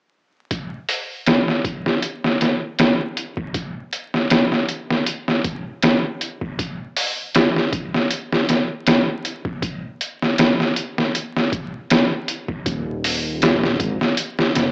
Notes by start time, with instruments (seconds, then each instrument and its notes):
0.51 kick, closed hi-hat
0.88 open hi-hat
1.26 snare, closed hi-hat
1.48 snare
1.65 kick, closed hi-hat
1.86 snare
2.03 closed hi-hat
2.25 snare
2.41 snare, closed hi-hat
2.79 snare, closed hi-hat
3.17 closed hi-hat
3.37 kick
3.54 kick, closed hi-hat
3.93 closed hi-hat
4.14 snare
4.30 snare, closed hi-hat
4.52 snare
4.69 closed hi-hat
4.91 snare
5.07 closed hi-hat
5.28 snare
5.44 kick, closed hi-hat
5.82 snare, closed hi-hat
6.21 closed hi-hat
6.41 kick
6.59 kick, closed hi-hat
6.96 open hi-hat
7.34 snare, closed hi-hat
7.56 snare
7.72 kick, closed hi-hat
7.94 snare
8.10 closed hi-hat
8.32 snare
8.49 snare, closed hi-hat
8.87 snare, closed hi-hat
9.25 closed hi-hat
9.45 kick
9.62 kick, closed hi-hat
10.01 closed hi-hat
10.23 snare
10.38 snare, closed hi-hat
10.60 snare
10.76 closed hi-hat
10.98 snare
11.15 closed hi-hat
11.36 snare
11.52 kick, closed hi-hat
11.90 snare, closed hi-hat
12.28 closed hi-hat
12.48 kick
12.66 detuned saw bass D#1, kick, closed hi-hat
13.04 open hi-hat
13.42 snare, closed hi-hat
13.64 snare
13.80 detuned saw bass G#1, kick, closed hi-hat
14.01 snare
14.18 closed hi-hat
14.39 snare
14.56 detuned saw bass F#1, snare, closed hi-hat